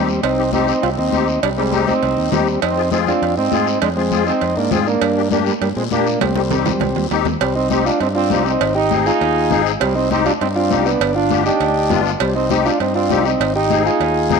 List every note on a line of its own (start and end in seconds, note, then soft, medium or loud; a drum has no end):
0.00 0.17 D#2 medium
0.00 0.21 G3 medium
0.00 0.21 C4 medium
0.09 short guiro medium
0.22 0.71 C2 medium
0.22 0.50 C4 medium
0.22 0.51 C4 medium
0.22 0.51 D#4 medium
0.22 cowbell loud
0.22 long guiro medium
0.37 0.43 C4 medium
0.37 0.43 D#4 medium
0.37 0.43 G4 medium
0.53 0.74 C4 medium
0.53 0.67 C4 medium
0.53 0.74 D#4 medium
0.53 0.67 D#4 loud
0.53 0.74 G4 medium
0.53 high conga medium
0.53 short guiro medium
0.68 0.82 C4 medium
0.68 0.83 D#4 loud
0.68 short guiro medium
0.82 0.95 C2 medium
0.82 0.89 C4 medium
0.82 0.90 C4 medium
0.82 0.90 F4 loud
0.82 cowbell medium
0.82 long guiro medium
0.97 1.10 D#2 loud
0.97 1.39 C4 medium
0.97 1.40 C4 medium
0.97 1.40 D#4 medium
1.12 1.37 D#2 medium
1.12 1.28 C4 medium
1.12 1.28 D#4 medium
1.12 1.28 G4 medium
1.12 high conga medium
1.12 short guiro medium
1.28 short guiro medium
1.43 1.91 C2 loud
1.43 1.50 G3 medium
1.43 1.50 D4 medium
1.43 cowbell loud
1.43 long guiro medium
1.57 1.85 G3 medium
1.57 1.86 G#3 medium
1.57 1.62 C4 medium
1.57 1.85 C4 medium
1.57 1.63 D#4 medium
1.57 1.63 G4 medium
1.72 1.93 C4 medium
1.72 1.93 D#4 medium
1.72 1.93 G4 medium
1.72 high conga medium
1.72 short guiro medium
1.87 2.29 C4 medium
1.87 2.33 D#4 medium
1.87 high conga medium
1.87 short guiro medium
2.03 2.14 C2 medium
2.03 cowbell medium
2.03 long guiro medium
2.17 2.29 D#2 medium
2.31 2.56 D#2 medium
2.31 2.60 G3 medium
2.31 2.47 C4 medium
2.31 2.60 C4 medium
2.31 2.48 D#4 medium
2.31 2.48 G4 medium
2.31 high conga medium
2.31 low conga medium
2.31 low timbale medium
2.31 short guiro medium
2.47 short guiro medium
2.62 3.10 F2 medium
2.62 2.90 C4 medium
2.62 2.90 D#4 medium
2.62 cowbell loud
2.62 long guiro medium
2.76 2.82 C4 medium
2.76 2.82 F4 medium
2.76 2.82 G#4 medium
2.91 3.12 C4 medium
2.91 2.99 C4 medium
2.91 2.99 D#4 medium
2.91 3.13 F4 medium
2.91 3.13 G#4 medium
2.91 high conga medium
2.91 short guiro medium
3.07 3.35 C4 medium
3.07 3.35 D4 medium
3.07 3.35 F4 medium
3.07 high conga medium
3.07 short guiro medium
3.22 3.34 F2 medium
3.22 cowbell medium
3.22 long guiro medium
3.37 3.49 G#2 medium
3.37 3.79 C4 medium
3.37 3.79 D#4 medium
3.52 3.76 G#2 medium
3.52 3.68 C4 medium
3.52 3.68 F4 medium
3.52 3.68 G#4 medium
3.52 high conga medium
3.52 short guiro medium
3.67 short guiro medium
3.82 4.30 F2 loud
3.82 3.89 G#3 medium
3.82 3.89 D4 medium
3.82 cowbell loud
3.82 long guiro medium
3.97 4.25 G#3 medium
3.97 4.24 C4 medium
3.97 4.02 C4 medium
3.97 4.02 F4 medium
3.97 4.02 G#4 medium
4.11 4.32 C4 medium
4.11 4.32 F4 medium
4.11 4.33 G#4 medium
4.11 high conga medium
4.11 short guiro medium
4.27 4.54 C4 medium
4.27 4.55 C4 medium
4.27 4.57 D#4 loud
4.27 short guiro medium
4.41 4.53 F2 medium
4.41 cowbell medium
4.41 long guiro medium
4.57 4.68 G#2 loud
4.57 4.71 A#3 medium
4.57 4.71 D4 medium
4.71 4.96 G#2 medium
4.71 4.79 G#3 medium
4.71 4.87 C4 medium
4.71 4.79 C4 medium
4.71 4.87 F4 medium
4.71 4.87 G#4 medium
4.71 high conga medium
4.71 low conga medium
4.71 low timbale medium
4.71 short guiro medium
4.87 5.28 A#3 medium
4.87 5.21 A#3 medium
4.87 5.28 D4 medium
4.87 short guiro medium
5.01 5.49 G2 loud
5.01 cowbell loud
5.01 long guiro medium
5.16 5.21 A#3 medium
5.16 5.22 D4 medium
5.16 5.22 G4 medium
5.31 5.52 A#3 medium
5.31 5.38 A#3 medium
5.31 5.40 A#3 medium
5.31 5.52 D4 medium
5.31 5.39 D4 medium
5.31 5.52 G4 medium
5.31 high conga medium
5.31 short guiro medium
5.46 5.54 G3 medium
5.46 5.54 A#3 medium
5.46 short guiro medium
5.61 5.73 G2 medium
5.61 5.69 G3 medium
5.61 5.69 A#3 medium
5.61 cowbell medium
5.61 long guiro medium
5.76 5.88 A#2 loud
5.76 5.83 G#3 medium
5.76 5.84 G#3 medium
5.76 5.84 C4 medium
5.91 6.15 A#2 medium
5.91 6.07 A#3 medium
5.91 6.19 A#3 medium
5.91 6.20 A#3 medium
5.91 6.07 D4 medium
5.91 6.19 D4 medium
5.91 6.07 G4 medium
5.91 high conga medium
5.91 short guiro medium
6.07 short guiro medium
6.21 6.69 C2 loud
6.21 7.07 G3 medium
6.21 7.08 G3 medium
6.21 7.07 C4 medium
6.21 cowbell loud
6.21 high conga medium
6.21 high timbale medium
6.21 long guiro medium
6.36 6.41 C4 medium
6.36 6.42 D#4 medium
6.36 6.42 G4 medium
6.36 high conga medium
6.36 high timbale medium
6.51 6.72 C4 medium
6.51 6.72 D#4 medium
6.51 6.72 G4 medium
6.51 low conga medium
6.51 high timbale medium
6.51 short guiro medium
6.65 low conga loud
6.65 low timbale medium
6.65 short guiro medium
6.80 6.93 C2 medium
6.80 cowbell medium
6.80 low conga medium
6.80 low timbale medium
6.80 long guiro medium
6.96 7.08 D#2 medium
6.96 low timbale medium
7.11 7.35 D#2 medium
7.11 7.26 C4 medium
7.11 7.27 D#4 medium
7.11 7.27 G4 medium
7.11 low timbale medium
7.11 short guiro medium
7.25 low conga loud
7.25 low timbale medium
7.25 short guiro medium
7.41 7.89 C2 medium
7.41 7.55 G3 medium
7.41 7.55 C4 medium
7.41 cowbell loud
7.41 long guiro medium
7.55 7.70 C4 medium
7.55 7.69 D#4 medium
7.70 7.91 C4 medium
7.70 7.85 C4 medium
7.70 7.85 D#4 medium
7.70 7.92 D#4 medium
7.70 7.92 G4 medium
7.70 high conga medium
7.70 short guiro medium
7.86 8.00 D4 medium
7.86 8.00 F4 medium
7.86 short guiro medium
8.00 8.32 G2 medium
8.00 8.08 C4 medium
8.00 8.09 C4 medium
8.00 8.07 D#4 medium
8.00 cowbell medium
8.00 long guiro medium
8.15 8.44 C4 medium
8.15 8.44 D4 medium
8.15 8.43 F4 medium
8.30 8.55 C2 medium
8.30 8.52 C4 medium
8.30 8.52 D#4 medium
8.30 8.52 G4 medium
8.30 high conga medium
8.30 short guiro medium
8.45 8.74 C4 medium
8.45 8.75 D#4 loud
8.45 short guiro medium
8.61 9.09 G#1 loud
8.61 cowbell loud
8.61 long guiro medium
8.75 9.04 D#4 medium
8.75 9.04 D#4 loud
8.75 9.06 G4 loud
8.90 9.11 C4 medium
8.90 9.12 D#4 medium
8.90 9.12 G#4 medium
8.90 high conga medium
8.90 short guiro medium
9.06 9.62 D#4 loud
9.06 9.62 F4 medium
9.06 9.62 G#4 loud
9.06 short guiro medium
9.21 9.53 D#2 medium
9.21 cowbell medium
9.21 long guiro medium
9.50 9.75 G#1 medium
9.50 9.71 C4 medium
9.50 9.71 D#4 medium
9.50 9.72 G#4 medium
9.50 high conga medium
9.50 low conga medium
9.50 short guiro medium
9.66 short guiro medium
9.80 10.29 C2 medium
9.80 9.95 G3 medium
9.80 9.94 C4 medium
9.80 cowbell loud
9.80 long guiro medium
9.95 10.10 C4 medium
9.95 10.09 D#4 loud
10.11 10.32 C4 medium
10.11 10.25 C4 medium
10.11 10.32 D#4 medium
10.11 10.25 D#4 loud
10.11 10.32 G4 medium
10.11 high conga medium
10.11 short guiro medium
10.26 10.33 D4 medium
10.26 10.32 F4 loud
10.26 high conga medium
10.26 short guiro medium
10.41 10.72 G2 medium
10.41 10.48 C4 medium
10.41 10.48 D#4 medium
10.41 cowbell medium
10.41 long guiro medium
10.56 10.84 C4 medium
10.56 10.84 D4 medium
10.56 10.86 F4 loud
10.70 10.95 C2 medium
10.70 10.91 C4 medium
10.70 10.91 D#4 medium
10.70 10.92 G4 medium
10.70 high conga medium
10.70 short guiro medium
10.85 11.14 B3 medium
10.85 11.15 D4 medium
10.85 short guiro medium
11.00 11.48 G1 medium
11.00 cowbell loud
11.00 long guiro medium
11.16 11.44 D4 medium
11.16 11.43 F4 loud
11.30 11.51 B3 medium
11.30 11.51 D4 medium
11.30 11.51 G4 medium
11.30 high conga medium
11.30 short guiro medium
11.45 12.01 D4 medium
11.45 12.02 D#4 medium
11.45 12.01 G4 loud
11.45 short guiro medium
11.60 11.92 D2 medium
11.60 cowbell medium
11.60 long guiro medium
11.90 12.14 G1 medium
11.90 12.11 B3 medium
11.90 12.11 D4 medium
11.90 12.11 F4 medium
11.90 high conga medium
11.90 low conga medium
11.90 low timbale medium
11.90 short guiro medium
12.06 short guiro medium
12.20 12.68 C2 medium
12.20 12.34 G3 medium
12.20 12.35 G3 medium
12.20 12.34 C4 medium
12.20 cowbell loud
12.20 long guiro medium
12.36 12.48 C4 medium
12.36 12.50 C4 medium
12.36 12.50 D#4 medium
12.49 12.63 C4 medium
12.49 12.71 C4 medium
12.49 12.65 C4 medium
12.49 12.71 D#4 medium
12.49 12.66 D#4 loud
12.49 12.71 G4 medium
12.49 high conga medium
12.49 short guiro medium
12.64 12.78 D4 medium
12.64 12.79 D4 medium
12.64 12.79 F4 medium
12.64 short guiro medium
12.80 13.12 G2 medium
12.80 12.94 C4 medium
12.80 12.95 C4 medium
12.80 12.94 D#4 medium
12.80 cowbell medium
12.80 long guiro medium
12.95 13.23 C4 medium
12.95 13.23 D4 medium
12.95 13.26 F4 medium
13.10 13.34 C2 medium
13.10 13.31 C4 medium
13.10 13.31 D#4 medium
13.10 13.31 G4 medium
13.10 high conga medium
13.10 short guiro medium
13.26 13.53 C4 medium
13.26 13.54 C4 medium
13.26 13.53 D#4 medium
13.26 short guiro medium
13.40 13.88 G#1 medium
13.40 cowbell loud
13.40 long guiro medium
13.56 13.83 D#4 medium
13.56 13.83 G4 loud
13.70 13.91 C4 medium
13.70 13.91 D#4 medium
13.70 13.91 G#4 medium
13.70 high conga medium
13.70 short guiro medium
13.86 14.40 D#4 medium
13.86 14.40 F4 medium
13.86 14.40 G#4 medium
13.86 short guiro medium
14.00 14.32 D#2 medium
14.00 cowbell medium
14.00 long guiro medium
14.30 14.40 G#1 medium
14.30 14.40 C4 medium
14.30 14.40 D#4 medium
14.30 14.40 G#4 loud
14.30 high conga medium
14.30 low conga medium
14.30 short guiro medium